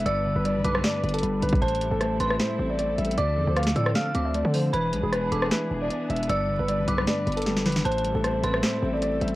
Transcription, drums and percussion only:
0.06 closed hi-hat medium
0.45 closed hi-hat medium
0.64 closed hi-hat medium
0.75 cross-stick medium
0.84 snare loud
0.84 closed hi-hat medium
1.03 closed hi-hat soft
1.09 closed hi-hat medium
1.14 closed hi-hat medium
1.18 closed hi-hat medium
1.23 closed hi-hat medium
1.42 closed hi-hat medium
1.42 open hi-hat medium
1.49 kick loud
1.49 closed hi-hat medium
1.55 closed hi-hat medium
1.62 closed hi-hat medium
1.68 closed hi-hat medium
1.75 closed hi-hat soft
1.81 closed hi-hat medium
2.01 cross-stick medium
2.01 closed hi-hat medium
2.20 closed hi-hat medium
2.31 cross-stick medium
2.40 snare loud
2.40 closed hi-hat medium
2.79 closed hi-hat medium
2.98 closed hi-hat soft
3.05 closed hi-hat medium
3.11 closed hi-hat medium
3.18 closed hi-hat medium
3.57 cross-stick medium
3.57 closed hi-hat medium
3.63 snare medium
3.63 closed hi-hat medium
3.70 closed hi-hat medium
3.76 closed hi-hat medium
3.86 cross-stick medium
3.95 snare loud
3.95 closed hi-hat medium
4.15 closed hi-hat medium
4.35 closed hi-hat medium
4.54 open hi-hat medium
4.73 closed hi-hat medium
4.93 closed hi-hat medium
5.12 cross-stick medium
5.12 closed hi-hat medium
5.32 closed hi-hat medium
5.42 cross-stick medium
5.51 snare loud
5.51 closed hi-hat medium
5.90 closed hi-hat medium
6.10 closed hi-hat soft
6.16 closed hi-hat medium
6.23 closed hi-hat medium
6.29 closed hi-hat medium
6.68 closed hi-hat medium
6.88 closed hi-hat medium
6.98 cross-stick medium
7.07 snare loud
7.07 closed hi-hat medium
7.27 closed hi-hat soft
7.32 closed hi-hat medium
7.37 closed hi-hat medium
7.42 closed hi-hat medium
7.46 snare medium
7.46 closed hi-hat medium
7.57 snare medium
7.66 snare loud
7.66 closed hi-hat medium
7.66 open hi-hat medium
7.72 snare medium
7.72 closed hi-hat medium
7.79 closed hi-hat medium
7.85 closed hi-hat medium
7.92 closed hi-hat medium
7.98 closed hi-hat soft
8.05 closed hi-hat medium
8.24 cross-stick medium
8.24 closed hi-hat medium
8.44 closed hi-hat medium
8.54 cross-stick medium
8.63 snare loud
8.63 closed hi-hat medium
9.02 closed hi-hat medium
9.21 closed hi-hat soft
9.28 closed hi-hat medium

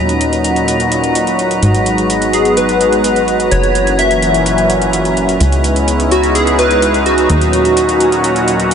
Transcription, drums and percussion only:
0.09 closed hi-hat soft
0.21 closed hi-hat medium
0.33 closed hi-hat soft
0.44 closed hi-hat medium
0.56 closed hi-hat soft
0.68 closed hi-hat medium
0.80 closed hi-hat soft
0.92 closed hi-hat medium
1.04 closed hi-hat soft
1.15 closed hi-hat medium
1.27 closed hi-hat soft
1.39 closed hi-hat soft
1.51 closed hi-hat soft
1.63 closed hi-hat medium
1.75 closed hi-hat soft
1.86 closed hi-hat medium
1.98 closed hi-hat soft
2.10 closed hi-hat medium
2.22 closed hi-hat soft
2.33 closed hi-hat medium
2.45 closed hi-hat soft
2.57 closed hi-hat medium
2.69 closed hi-hat soft
2.81 closed hi-hat medium
2.92 closed hi-hat soft
3.04 closed hi-hat medium
3.16 closed hi-hat soft
3.28 closed hi-hat soft
3.40 closed hi-hat soft
3.51 closed hi-hat medium
3.63 closed hi-hat soft
3.75 closed hi-hat medium
3.87 closed hi-hat soft
3.99 closed hi-hat medium
4.11 closed hi-hat soft
4.22 closed hi-hat medium
4.34 closed hi-hat soft
4.46 closed hi-hat medium
4.58 closed hi-hat soft
4.70 closed hi-hat medium
4.82 closed hi-hat soft
4.93 closed hi-hat medium
5.05 closed hi-hat soft
5.17 closed hi-hat soft
5.29 closed hi-hat soft
5.40 closed hi-hat medium
5.52 closed hi-hat soft
5.64 closed hi-hat medium
5.76 closed hi-hat soft
5.88 closed hi-hat medium
6.00 closed hi-hat soft
6.11 closed hi-hat medium
6.23 closed hi-hat soft
6.35 closed hi-hat medium
6.47 closed hi-hat soft
6.59 closed hi-hat medium
6.71 closed hi-hat soft
6.82 closed hi-hat medium
6.94 closed hi-hat soft
7.06 closed hi-hat soft
7.18 closed hi-hat soft
7.30 closed hi-hat medium
7.41 closed hi-hat soft
7.53 closed hi-hat medium
7.65 closed hi-hat soft
7.77 closed hi-hat medium
7.89 closed hi-hat soft
8.00 closed hi-hat medium
8.12 closed hi-hat soft
8.24 closed hi-hat medium
8.36 closed hi-hat soft
8.48 closed hi-hat medium
8.60 closed hi-hat soft

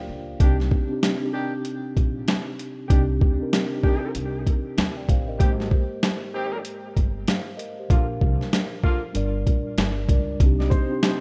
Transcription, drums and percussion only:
0.40 kick loud
0.40 closed hi-hat medium
0.60 snare soft
0.71 kick loud
1.03 snare loud
1.03 closed hi-hat medium
1.65 closed hi-hat medium
1.97 kick medium
1.97 closed hi-hat soft
2.28 snare loud
2.28 closed hi-hat medium
2.59 closed hi-hat medium
2.90 kick loud
2.90 closed hi-hat medium
3.21 kick loud
3.53 snare loud
3.53 closed hi-hat medium
3.83 kick medium
4.15 closed hi-hat medium
4.47 kick medium
4.47 closed hi-hat medium
4.78 snare loud
4.78 closed hi-hat medium
5.09 kick loud
5.09 closed hi-hat medium
5.40 kick loud
5.40 closed hi-hat medium
5.60 snare soft
5.71 kick loud
6.03 snare loud
6.03 closed hi-hat medium
6.65 closed hi-hat medium
6.97 kick medium
6.97 closed hi-hat soft
7.28 snare loud
7.28 closed hi-hat medium
7.59 closed hi-hat medium
7.90 kick loud
7.90 closed hi-hat medium
8.21 kick loud
8.41 snare soft
8.53 snare loud
8.53 closed hi-hat medium
8.84 kick medium
9.15 closed hi-hat medium
9.47 kick medium
9.47 closed hi-hat soft
9.78 snare loud
9.78 closed hi-hat medium
10.09 kick loud
10.09 closed hi-hat medium
10.40 kick loud
10.40 closed hi-hat medium
10.60 snare soft
10.71 kick loud
10.71 shaker medium
11.03 snare loud
11.03 closed hi-hat medium

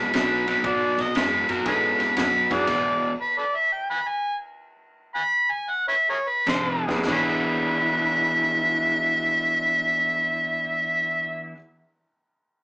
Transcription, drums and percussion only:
0.14 snare loud
0.14 ride medium
0.48 snare soft
0.48 ride medium
0.64 kick loud
0.64 ride medium
0.98 snare soft
0.98 ride medium
1.15 snare loud
1.15 ride medium
1.49 snare soft
1.49 ride medium
1.66 kick loud
1.66 snare soft
1.66 ride medium
2.00 snare soft
2.00 ride medium
2.17 snare loud
2.17 ride medium
2.51 kick medium
2.51 snare soft
2.51 ride medium
2.67 kick loud
2.67 snare soft
2.67 crash medium
2.67 ride medium
6.47 kick medium
6.47 snare loud
6.47 ride medium
6.89 snare medium
7.03 snare medium
7.09 kick loud
7.09 crash medium

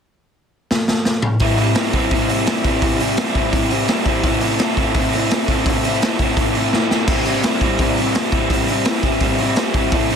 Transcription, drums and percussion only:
0.71 snare medium
0.88 snare medium
1.05 snare medium
1.22 mid tom loud
1.40 kick loud
1.40 open hi-hat medium
1.58 open hi-hat medium
1.75 snare loud
1.75 open hi-hat medium
1.93 kick medium
1.93 open hi-hat medium
2.11 kick loud
2.11 open hi-hat medium
2.29 open hi-hat medium
2.47 snare loud
2.47 open hi-hat medium
2.64 kick medium
2.64 open hi-hat medium
2.82 kick loud
2.82 open hi-hat medium
3.00 open hi-hat medium
3.17 snare loud
3.17 open hi-hat medium
3.35 kick medium
3.35 open hi-hat medium
3.53 kick loud
3.53 open hi-hat medium
3.71 open hi-hat medium
3.88 snare loud
3.88 open hi-hat medium
4.05 kick medium
4.05 open hi-hat medium
4.24 kick loud
4.24 open hi-hat medium
4.41 open hi-hat medium
4.59 snare loud
4.59 open hi-hat medium
4.77 kick medium
4.77 open hi-hat medium
4.94 kick loud
4.94 open hi-hat medium
5.13 open hi-hat medium
5.31 snare loud
5.31 open hi-hat medium
5.48 kick medium
5.48 open hi-hat medium
5.66 kick loud
5.66 open hi-hat medium
5.84 open hi-hat medium
6.02 snare loud
6.02 open hi-hat medium
6.19 kick medium
6.19 open hi-hat medium
6.37 kick loud
6.37 open hi-hat medium
6.55 open hi-hat soft
6.73 snare medium
6.91 snare medium
7.08 kick loud
7.08 open hi-hat medium
7.08 crash medium
7.25 open hi-hat medium
7.43 snare loud
7.43 open hi-hat medium
7.61 kick medium
7.61 open hi-hat medium
7.79 kick loud
7.79 open hi-hat medium
7.97 open hi-hat medium
8.15 snare loud
8.15 open hi-hat medium
8.32 kick medium
8.32 open hi-hat medium
8.50 kick loud
8.50 open hi-hat medium
8.68 open hi-hat medium
8.85 snare loud
8.85 open hi-hat medium
9.03 kick medium
9.03 open hi-hat medium
9.20 kick loud
9.20 open hi-hat medium
9.38 open hi-hat medium
9.56 snare loud
9.56 open hi-hat medium
9.74 kick medium
9.74 open hi-hat medium
9.92 kick loud
9.92 open hi-hat medium
10.10 open hi-hat medium

